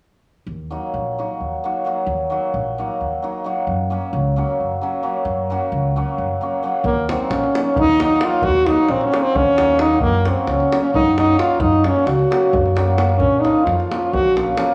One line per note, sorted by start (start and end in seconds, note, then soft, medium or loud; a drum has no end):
0.47 0.74 D#2 medium
0.70 1.17 F#3 medium
0.70 0.85 A#3 soft
0.70 0.85 D#4 soft
0.70 0.85 F#4 medium
0.94 1.21 A#1 medium
1.18 1.62 F#3 soft
1.18 1.32 A#3 soft
1.18 1.32 D#4 soft
1.18 1.32 F#4 medium
1.40 1.54 D#2 medium
1.64 1.84 F#3 soft
1.64 1.77 A#3 medium
1.64 1.77 D#4 medium
1.64 1.78 F#4 medium
1.85 2.29 F#3 medium
1.85 1.99 A#3 soft
1.85 1.99 D#4 medium
1.85 1.99 F#4 medium
2.06 2.34 D#2 medium
2.30 2.77 F#3 medium
2.30 2.44 A#3 soft
2.30 2.44 D#4 soft
2.30 2.45 F#4 medium
2.54 2.81 A#1 medium
2.78 3.21 F#3 medium
2.78 2.92 A#3 medium
2.78 2.92 D#4 soft
2.78 2.92 F#4 medium
3.01 3.14 D#2 medium
3.22 3.43 F#3 medium
3.22 3.37 A#3 soft
3.22 3.37 D#4 soft
3.22 3.37 F#4 medium
3.44 3.70 F#3 medium
3.44 3.58 A#3 soft
3.44 3.58 D#4 medium
3.44 3.59 F#4 medium
3.67 3.94 F#2 medium
3.90 4.35 F#3 medium
3.90 4.04 A#3 medium
3.90 4.05 C#4 medium
3.90 4.05 F#4 medium
4.13 4.41 C#2 medium
4.36 4.80 F#3 medium
4.36 4.51 A#3 medium
4.36 4.51 C#4 medium
4.36 4.51 F#4 medium
4.60 4.74 F#2 medium
4.81 5.02 F#3 medium
4.81 4.95 A#3 soft
4.81 4.96 C#4 soft
4.81 4.96 F#4 medium
5.03 5.49 F#3 medium
5.03 5.17 A#3 medium
5.03 5.17 C#4 medium
5.03 5.17 F#4 medium
5.25 5.53 F#2 medium
5.50 5.95 F#3 medium
5.50 5.64 A#3 medium
5.50 5.64 C#4 medium
5.50 5.64 F#4 medium
5.72 6.00 C#2 medium
5.96 6.40 F#3 medium
5.96 6.10 A#3 medium
5.96 6.10 C#4 medium
5.96 6.10 F#4 medium
6.18 6.32 F#2 medium
6.41 6.62 F#3 medium
6.41 6.55 A#3 medium
6.41 6.55 C#4 medium
6.41 6.55 F#4 medium
6.63 6.88 F#3 medium
6.63 6.76 A#3 medium
6.63 6.76 C#4 medium
6.63 6.77 F#4 medium
6.84 7.12 D#2 medium
6.84 7.11 A#3 medium
6.84 davul low medium
7.09 7.54 F#3 medium
7.09 7.23 A#3 medium
7.09 7.34 C4 medium
7.09 7.23 D#4 medium
7.09 7.23 F#4 medium
7.09 davul high medium
7.30 7.45 A#1 medium
7.30 7.63 C#4 medium
7.30 davul high medium
7.44 davul high soft
7.55 7.98 F#3 medium
7.55 7.69 A#3 soft
7.55 7.69 D#4 soft
7.55 7.69 F#4 medium
7.55 davul high medium
7.64 7.81 C#4 medium
7.76 8.16 D#2 medium
7.76 8.01 D#4 loud
7.76 davul low loud
8.00 8.19 F#3 medium
8.00 8.13 A#3 medium
8.00 8.13 D#4 medium
8.00 8.14 F#4 medium
8.00 davul high medium
8.04 8.26 D#4 medium
8.20 8.65 F#3 medium
8.20 8.34 A#3 medium
8.20 8.35 D#4 medium
8.20 8.46 F4 medium
8.20 8.35 F#4 medium
8.20 davul high medium
8.42 8.70 D#2 medium
8.42 8.69 F#4 medium
8.42 davul low medium
8.66 9.10 F#3 medium
8.66 8.80 A#3 medium
8.66 8.81 D#4 medium
8.66 8.92 D#4 medium
8.66 8.81 F#4 medium
8.66 davul high medium
8.89 9.04 A#1 medium
8.89 9.06 C4 medium
8.89 davul high soft
9.01 9.22 C#4 medium
9.01 davul high soft
9.12 9.57 F#3 medium
9.12 9.26 A#3 medium
9.12 9.27 D#4 medium
9.12 9.27 F#4 medium
9.12 davul high medium
9.21 9.37 C4 medium
9.35 10.01 D#2 medium
9.35 9.83 C#4 loud
9.35 davul low medium
9.58 9.78 F#3 medium
9.58 9.72 A#3 medium
9.58 9.72 D#4 medium
9.58 9.72 F#4 medium
9.58 davul high medium
9.79 10.05 F#3 medium
9.79 9.93 A#3 medium
9.79 9.93 D#4 medium
9.79 10.01 D#4 medium
9.79 9.94 F#4 medium
9.79 davul high medium
10.00 10.29 F#2 medium
10.00 10.30 A#3 medium
10.00 davul low medium
10.25 10.71 F#3 medium
10.25 10.39 A#3 medium
10.25 10.51 C4 medium
10.25 10.39 C#4 soft
10.25 10.40 F#4 medium
10.25 davul high medium
10.47 10.62 C#2 medium
10.47 10.80 C#4 medium
10.47 davul high medium
10.60 davul high soft
10.72 11.17 F#3 medium
10.72 10.86 A#3 medium
10.72 10.86 C#4 medium
10.72 10.86 F#4 medium
10.72 davul high medium
10.82 10.94 C#4 medium
10.94 11.33 F#2 medium
10.94 11.16 D#4 medium
10.94 davul low medium
11.18 11.37 F#3 medium
11.18 11.31 A#3 medium
11.18 11.31 C#4 medium
11.18 11.37 D#4 medium
11.18 11.32 F#4 medium
11.18 davul high medium
11.38 11.83 F#3 medium
11.38 11.52 A#3 medium
11.38 11.52 C#4 medium
11.38 11.62 F4 medium
11.38 11.52 F#4 medium
11.38 davul high medium
11.60 11.88 F#2 loud
11.60 11.85 D#4 medium
11.60 davul low medium
11.73 davul high soft
11.84 12.29 F#3 medium
11.84 11.98 A#3 medium
11.84 11.98 C#4 medium
11.84 12.08 C#4 medium
11.84 11.99 F#4 medium
11.84 davul high medium
11.96 davul high soft
12.06 12.21 C#2 medium
12.06 12.76 F#4 medium
12.06 davul high medium
12.19 davul high soft
12.31 12.74 F#3 medium
12.31 12.44 A#3 medium
12.31 12.45 C#4 medium
12.31 12.45 F#4 medium
12.31 davul high medium
12.43 davul high soft
12.53 13.21 F#2 medium
12.53 davul low medium
12.66 davul high soft
12.75 12.97 F#3 medium
12.75 12.90 A#3 medium
12.75 12.90 C#4 medium
12.75 12.90 F#4 medium
12.75 davul high medium
12.87 davul high soft
12.98 13.23 F#3 medium
12.98 13.11 A#3 medium
12.98 13.11 C#4 medium
12.98 13.12 F#4 medium
12.98 davul high medium
13.09 davul high soft
13.18 13.47 A#1 medium
13.18 13.42 C#4 medium
13.18 davul low medium
13.41 13.90 F3 medium
13.41 13.57 A#3 soft
13.41 13.57 C#4 medium
13.41 13.66 D#4 medium
13.41 davul high medium
13.45 13.58 F4 medium
13.65 13.81 F2 medium
13.65 13.97 F4 medium
13.65 davul high medium
13.80 davul high soft
13.91 14.34 F3 medium
13.91 14.05 A#3 medium
13.91 14.05 C#4 soft
13.91 14.05 F4 medium
13.91 davul high medium
13.98 14.14 F4 medium
14.12 14.52 A#1 medium
14.12 14.35 F#4 loud
14.12 davul low medium
14.36 14.56 F3 medium
14.36 14.49 A#3 medium
14.36 14.49 C#4 medium
14.36 14.50 F4 medium
14.36 davul high medium
14.57 14.74 F3 medium
14.57 14.70 A#3 medium
14.57 14.71 C#4 medium
14.57 14.71 F4 medium
14.57 davul high medium